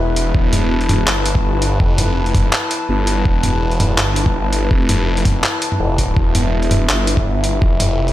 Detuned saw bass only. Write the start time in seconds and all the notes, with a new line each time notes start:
0.00 E1
0.34 E1
1.07 G1
1.80 F1
2.89 G1
3.25 E1
3.98 G1
4.71 F1
5.80 F1
6.16 E1
6.90 G1
7.62 F1